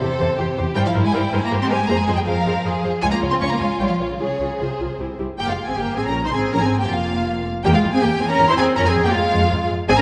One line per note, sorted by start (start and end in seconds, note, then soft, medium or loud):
0.00 0.08 E2 medium
0.00 0.56 C3 medium
0.00 0.08 G4 medium
0.00 0.38 A4 loud
0.00 0.55 C5 medium
0.00 0.08 C5 medium
0.19 0.27 E2 medium
0.19 0.27 G4 medium
0.19 0.26 C5 medium
0.38 0.45 E2 medium
0.38 0.46 G4 medium
0.38 0.76 G4 medium
0.38 0.46 C5 medium
0.57 0.65 E2 medium
0.57 0.64 G4 medium
0.57 0.64 C5 medium
0.75 0.83 G2 loud
0.75 0.84 G3 loud
0.75 1.52 E4 loud
0.75 0.83 A#4 medium
0.75 0.83 C5 medium
0.75 0.80 G5 loud
0.85 1.04 F3 loud
0.85 0.93 F5 medium
0.94 1.02 G2 medium
0.94 1.02 A#4 medium
0.94 1.02 C5 medium
1.03 1.13 G#3 loud
1.03 1.14 G#5 medium
1.12 1.20 G2 medium
1.12 1.32 G3 loud
1.12 1.21 A#4 medium
1.12 1.21 C5 medium
1.12 1.33 G5 medium
1.31 1.39 G2 medium
1.31 1.36 G#3 loud
1.31 1.40 A#4 medium
1.31 1.40 C5 medium
1.31 1.43 G#5 medium
1.42 1.60 A#3 loud
1.42 1.52 A#5 loud
1.50 1.58 G2 medium
1.50 1.89 G4 medium
1.50 1.59 A#4 medium
1.50 1.59 C5 medium
1.61 1.70 C4 loud
1.61 1.65 C6 loud
1.69 1.77 G2 medium
1.69 1.89 G#3 loud
1.69 1.77 A#4 medium
1.69 1.77 C5 medium
1.69 1.89 G#5 loud
1.88 1.96 F2 loud
1.88 1.98 A#3 loud
1.88 1.96 G#4 medium
1.88 2.26 G#4 loud
1.88 1.96 C5 medium
1.88 1.98 A#5 loud
1.97 2.17 G#3 loud
1.97 2.16 G#5 medium
2.07 2.15 F2 medium
2.07 2.16 G#4 medium
2.07 2.16 C5 medium
2.15 2.27 G3 loud
2.15 2.19 G5 loud
2.25 2.34 F2 medium
2.25 2.82 F3 loud
2.25 2.35 G#4 medium
2.25 2.64 A#4 loud
2.25 2.35 C5 medium
2.25 2.82 F5 loud
2.45 2.53 F2 medium
2.45 2.53 G#4 medium
2.45 2.54 C5 medium
2.64 2.72 F2 medium
2.64 2.72 G#4 medium
2.64 3.03 G#4 medium
2.64 2.72 C5 medium
2.83 2.91 F2 medium
2.83 2.91 G#4 medium
2.83 2.91 C5 medium
3.02 3.10 C#2 medium
3.02 3.11 G#3 loud
3.02 3.10 F4 medium
3.02 4.18 F4 loud
3.02 3.10 C#5 medium
3.02 3.06 G#5 loud
3.11 3.20 A#3 loud
3.11 3.19 A#5 medium
3.21 3.29 C#2 medium
3.21 3.29 F4 medium
3.21 3.29 C#5 medium
3.30 3.35 C4 loud
3.30 3.34 C6 medium
3.40 3.48 C#2 medium
3.40 3.45 C#4 loud
3.40 3.48 F4 medium
3.40 3.48 C#5 medium
3.40 3.50 C#6 medium
3.50 3.55 A#3 loud
3.50 3.60 A#5 medium
3.60 3.68 C#2 medium
3.60 3.68 G#3 medium
3.60 3.68 F4 medium
3.60 3.68 C#5 medium
3.60 3.79 G#5 medium
3.79 3.88 A#1 medium
3.79 3.89 G3 loud
3.79 3.88 F4 medium
3.79 3.88 C#5 medium
3.79 3.83 G5 medium
3.88 3.98 F3 medium
3.88 3.96 F5 medium
3.99 4.07 A#1 medium
3.99 4.08 F4 medium
3.99 4.08 C#5 medium
4.08 4.18 C#3 medium
4.08 4.12 C#5 medium
4.18 4.27 C2 medium
4.18 4.59 C#3 medium
4.18 4.27 F4 medium
4.18 4.27 G#4 medium
4.18 5.20 G#4 medium
4.18 4.58 C#5 medium
4.40 4.48 C2 medium
4.40 4.48 F4 medium
4.40 4.48 G#4 medium
4.59 4.67 C2 medium
4.59 5.20 C3 medium
4.59 4.68 F4 medium
4.59 4.68 G#4 medium
4.59 5.18 C5 medium
4.79 4.88 C2 medium
4.79 4.87 F4 medium
4.79 4.87 G#4 medium
4.99 5.07 C2 medium
4.99 5.08 E4 medium
4.99 5.07 G4 medium
5.19 5.27 C2 medium
5.19 5.27 E4 medium
5.19 5.27 G4 medium
5.38 5.42 G1 loud
5.38 5.48 A#3 loud
5.38 5.48 G4 loud
5.38 5.48 G5 loud
5.38 5.43 G5 loud
5.48 5.56 F1 medium
5.48 5.67 G#3 medium
5.48 5.68 F4 medium
5.48 5.68 F5 medium
5.48 5.57 F5 medium
5.67 5.77 G#1 medium
5.67 5.71 C4 medium
5.67 5.77 G#4 loud
5.67 5.77 G#5 medium
5.76 5.84 G1 loud
5.76 5.96 A#3 medium
5.76 5.96 G4 loud
5.76 5.96 G5 medium
5.96 6.05 G#1 medium
5.96 6.06 C4 medium
5.96 6.05 G#4 medium
5.96 6.06 G#5 medium
5.96 6.00 G#5 medium
6.05 6.24 A#1 medium
6.05 6.24 C#4 medium
6.05 6.24 A#4 loud
6.05 6.24 A#5 medium
6.05 6.14 A#5 medium
6.23 6.33 C2 medium
6.23 6.28 D#4 medium
6.23 6.28 C5 loud
6.23 6.34 C6 medium
6.33 6.40 G#1 loud
6.33 6.52 C4 medium
6.33 6.52 G#4 loud
6.33 6.52 G#5 medium
6.33 6.41 G#5 medium
6.52 6.61 A#1 loud
6.52 6.57 C#4 loud
6.52 6.61 A#4 loud
6.52 6.62 A#5 loud
6.61 6.81 G#1 medium
6.61 6.81 C4 medium
6.61 6.81 G#4 loud
6.61 6.80 G#5 medium
6.61 6.69 G#5 medium
6.80 6.89 G1 medium
6.80 6.89 A#3 medium
6.80 6.90 G4 loud
6.80 6.90 G5 medium
6.80 6.85 G5 medium
6.89 7.45 F1 medium
6.89 7.45 A#3 medium
6.89 7.46 F4 medium
6.89 7.46 F5 medium
6.89 7.46 F5 loud
7.64 7.72 E2 loud
7.64 7.74 A#3 loud
7.64 7.68 G4 loud
7.64 7.73 G5 loud
7.64 7.69 G5 loud
7.74 7.93 G#3 loud
7.74 7.93 F4 loud
7.74 7.81 F5 medium
7.74 7.93 F5 loud
7.84 7.91 E2 medium
7.92 8.02 C4 loud
7.92 8.02 G#4 loud
7.92 8.02 G#5 loud
7.92 7.97 G#5 loud
8.01 8.10 E2 medium
8.01 8.09 A#3 medium
8.01 8.21 G4 loud
8.01 8.20 G5 loud
8.01 8.21 G5 medium
8.20 8.28 E2 loud
8.20 8.24 C4 loud
8.20 8.30 G#4 loud
8.20 8.30 G#5 loud
8.29 8.48 C#4 loud
8.29 8.49 A#4 loud
8.29 8.48 A#5 loud
8.40 8.47 E2 medium
8.47 8.58 E4 loud
8.47 8.53 C5 loud
8.47 8.51 C6 loud
8.47 8.59 C6 loud
8.57 8.66 E2 medium
8.57 8.76 C4 loud
8.57 8.66 G#4 loud
8.57 8.65 G#5 loud
8.57 8.66 G#5 loud
8.76 8.84 F2 loud
8.76 8.86 C#4 loud
8.76 8.86 A#4 loud
8.76 8.80 A#5 loud
8.76 8.86 A#5 loud
8.85 9.04 C4 loud
8.85 9.05 G#4 loud
8.85 8.93 G#5 loud
8.85 8.94 G#5 loud
8.95 9.03 F2 medium
9.04 9.08 A#3 loud
9.04 9.15 G4 loud
9.04 9.08 G5 loud
9.04 9.14 G5 loud
9.12 9.21 F2 medium
9.12 9.69 G#3 loud
9.12 9.71 F4 loud
9.12 9.69 F5 loud
9.33 9.40 F2 loud
9.51 9.59 F2 medium
9.70 9.77 F2 medium
9.88 9.96 G#1 loud
9.88 9.93 C4 loud
9.88 9.93 G#4 loud
9.88 9.98 G#5 loud
9.88 9.93 G#5 loud
9.98 10.02 A#5 loud